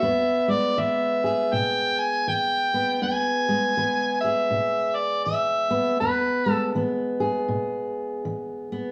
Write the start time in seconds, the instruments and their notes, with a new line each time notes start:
Already playing: harmonica E5
0.02 steel-string acoustic guitar E2 B3
0.48 steel-string acoustic guitar G#3, harmonica D5
0.78 steel-string acoustic guitar E3 B3, harmonica E5
1.24 steel-string acoustic guitar G#4, harmonica E5
1.53 steel-string acoustic guitar B2, harmonica G5
1.99 harmonica G#5
2.27 steel-string acoustic guitar E3, harmonica G5
2.74 steel-string acoustic guitar B3
3.02 steel-string acoustic guitar E2 B3, harmonica G#5
3.49 steel-string acoustic guitar G#3
3.77 steel-string acoustic guitar E3 B3
4.21 steel-string acoustic guitar G#4, harmonica E5
4.51 steel-string acoustic guitar B2
4.95 harmonica D5
5.25 steel-string acoustic guitar E3, harmonica E5
5.71 steel-string acoustic guitar B3
6.00 steel-string acoustic guitar E2 B3, harmonica B4
6.46 steel-string acoustic guitar G#3
6.52 harmonica A4
6.75 steel-string acoustic guitar E3 B3
7.20 steel-string acoustic guitar G#4
7.48 steel-string acoustic guitar B2
8.25 steel-string acoustic guitar E3
8.72 steel-string acoustic guitar B3